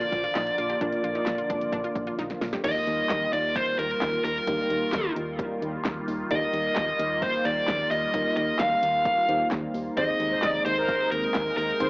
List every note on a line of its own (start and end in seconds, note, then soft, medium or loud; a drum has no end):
0.00 2.61 D3 medium
0.00 2.61 F3 medium
0.00 0.77 A#3 medium
0.00 2.61 A#3 medium
0.00 0.77 D4 medium
0.00 0.77 F4 medium
0.00 2.61 F4 medium
0.00 0.15 F4 medium
0.00 0.77 A#4 medium
0.00 2.15 D5 medium
0.00 closed hi-hat soft
0.12 0.28 A#1 loud
0.12 kick medium
0.12 closed hi-hat medium
0.24 0.31 F4 medium
0.24 closed hi-hat soft
0.35 0.51 A#1 loud
0.35 0.50 D#4 medium
0.35 snare loud
0.35 clap medium
0.35 closed hi-hat medium
0.47 closed hi-hat medium
0.58 0.74 A#1 loud
0.58 0.65 F4 medium
0.58 closed hi-hat medium
0.70 0.77 G4 medium
0.70 closed hi-hat medium
0.81 0.97 A#1 loud
0.81 2.61 A#3 medium
0.81 0.95 D4 medium
0.81 2.61 D4 medium
0.81 2.61 F4 medium
0.81 2.61 A#4 medium
0.81 kick loud
0.81 closed hi-hat medium
0.93 closed hi-hat medium
1.04 1.20 A#1 loud
1.04 1.11 F4 medium
1.04 closed hi-hat medium
1.15 1.30 D#4 medium
1.15 closed hi-hat soft
1.27 1.43 A#1 loud
1.27 snare loud
1.27 clap medium
1.27 closed hi-hat medium
1.38 1.45 F4 medium
1.38 closed hi-hat medium
1.50 1.66 G#1 medium
1.50 1.64 D4 medium
1.50 kick medium
1.50 closed hi-hat medium
1.61 closed hi-hat medium
1.72 1.89 A#1 loud
1.72 1.80 D4 medium
1.72 kick medium
1.72 closed hi-hat medium
1.84 1.99 F4 medium
1.84 closed hi-hat soft
1.95 2.12 A#1 loud
1.95 kick medium
1.95 closed hi-hat medium
2.07 2.14 F4 medium
2.07 closed hi-hat soft
2.18 2.34 A#1 loud
2.18 2.33 D#4 medium
2.18 snare medium
2.18 closed hi-hat medium
2.30 snare medium
2.30 closed hi-hat medium
2.41 2.57 A#1 loud
2.41 2.49 F4 medium
2.41 snare medium
2.41 open hi-hat medium
2.53 2.60 G4 medium
2.53 snare medium
2.53 closed hi-hat medium
2.64 2.80 D#2 loud
2.64 9.93 D#3 medium
2.64 9.93 G3 medium
2.64 4.44 A#3 medium
2.64 11.90 A#3 medium
2.64 4.44 D#4 medium
2.64 9.93 F4 medium
2.64 4.44 G4 medium
2.64 4.44 A#4 medium
2.64 3.33 D#5 loud
2.64 kick loud
2.64 closed hi-hat medium
2.64 crash loud
2.87 3.03 D#2 loud
2.87 closed hi-hat medium
3.10 3.26 D#2 loud
3.10 kick loud
3.10 snare loud
3.10 clap medium
3.10 closed hi-hat medium
3.33 3.57 D#2 loud
3.33 3.57 D5 loud
3.33 closed hi-hat medium
3.56 3.78 C5 loud
3.56 kick loud
3.56 closed hi-hat medium
3.79 3.95 D#2 loud
3.79 4.23 A#4 loud
3.79 closed hi-hat medium
4.02 4.18 D#2 loud
4.02 kick loud
4.02 snare loud
4.02 clap medium
4.02 closed hi-hat medium
4.24 4.41 D#2 loud
4.24 5.12 A#4 medium
4.24 open hi-hat medium
4.47 4.63 D#2 loud
4.47 6.27 A#3 medium
4.47 6.27 D#4 medium
4.47 6.27 G4 medium
4.47 6.27 A#4 medium
4.47 kick loud
4.47 closed hi-hat medium
4.70 4.86 D#2 loud
4.70 closed hi-hat medium
4.93 5.09 D#2 loud
4.93 kick loud
4.93 snare loud
4.93 clap loud
4.93 closed hi-hat medium
5.16 5.40 D#2 loud
5.16 closed hi-hat medium
5.39 kick loud
5.39 closed hi-hat medium
5.62 5.78 D#2 loud
5.62 closed hi-hat medium
5.85 6.01 D#2 loud
5.85 kick loud
5.85 snare loud
5.85 clap medium
5.85 closed hi-hat medium
6.08 6.24 D#2 loud
6.08 open hi-hat medium
6.31 6.47 D#2 loud
6.31 8.10 A#3 medium
6.31 8.10 D#4 medium
6.31 8.10 G4 medium
6.31 8.10 A#4 medium
6.31 7.25 D#5 medium
6.31 kick loud
6.31 closed hi-hat medium
6.53 6.70 D#2 loud
6.53 closed hi-hat medium
6.76 6.93 D#2 loud
6.76 kick loud
6.76 snare loud
6.76 clap medium
6.76 closed hi-hat medium
6.99 7.23 D#2 loud
6.99 closed hi-hat medium
7.22 7.46 C5 medium
7.22 kick loud
7.22 closed hi-hat medium
7.45 7.61 D#2 loud
7.45 7.91 D5 loud
7.45 closed hi-hat medium
7.68 7.84 D#2 loud
7.68 kick loud
7.68 snare loud
7.68 clap medium
7.68 closed hi-hat medium
7.91 8.07 D#2 loud
7.91 8.36 D#5 loud
7.91 open hi-hat medium
8.14 8.30 D#2 loud
8.14 9.26 A#3 medium
8.14 9.26 D#4 medium
8.14 9.26 G4 medium
8.14 9.26 A#4 medium
8.14 kick loud
8.14 closed hi-hat medium
8.37 8.53 D#2 loud
8.37 8.59 D#5 loud
8.37 closed hi-hat medium
8.59 8.76 D#2 loud
8.59 9.47 F5 loud
8.59 kick loud
8.59 snare loud
8.59 clap loud
8.59 closed hi-hat medium
8.83 9.07 D#2 loud
8.83 closed hi-hat medium
9.05 kick loud
9.05 closed hi-hat medium
9.28 9.44 D#2 loud
9.28 9.97 A#3 medium
9.28 9.96 D#4 medium
9.28 9.97 G4 medium
9.28 9.96 C5 medium
9.28 closed hi-hat medium
9.51 9.67 D#2 loud
9.51 kick loud
9.51 snare loud
9.51 clap medium
9.51 closed hi-hat medium
9.74 9.90 D#2 loud
9.74 open hi-hat medium
9.97 10.13 D#2 loud
9.97 11.90 C3 medium
9.97 11.90 G#3 medium
9.97 11.77 C4 medium
9.97 11.77 D#4 medium
9.97 11.90 D#4 medium
9.97 11.77 G#4 medium
9.97 11.77 C5 medium
9.97 10.04 C5 loud
9.97 10.42 D#5 loud
9.97 kick loud
9.97 closed hi-hat medium
10.20 10.36 D#2 loud
10.20 closed hi-hat medium
10.32 10.38 C5 medium
10.42 10.59 D#2 loud
10.42 10.62 D5 loud
10.42 10.50 D#5 medium
10.42 kick loud
10.42 snare loud
10.42 clap medium
10.42 closed hi-hat medium
10.66 10.90 D#2 loud
10.66 11.11 C5 loud
10.66 closed hi-hat medium
10.77 11.10 A#4 medium
10.88 kick loud
10.88 closed hi-hat medium
11.11 11.28 D#2 loud
11.11 11.56 A#4 loud
11.11 closed hi-hat medium
11.34 11.51 D#2 loud
11.34 kick loud
11.34 snare loud
11.34 clap medium
11.34 closed hi-hat medium
11.57 11.73 D#2 loud
11.57 11.90 A#4 medium
11.57 open hi-hat medium
11.80 11.90 D#2 loud
11.80 11.90 C4 medium
11.80 11.90 D#4 medium
11.80 11.90 G#4 medium
11.80 11.87 C5 loud
11.80 11.90 C5 medium
11.80 kick loud
11.80 closed hi-hat medium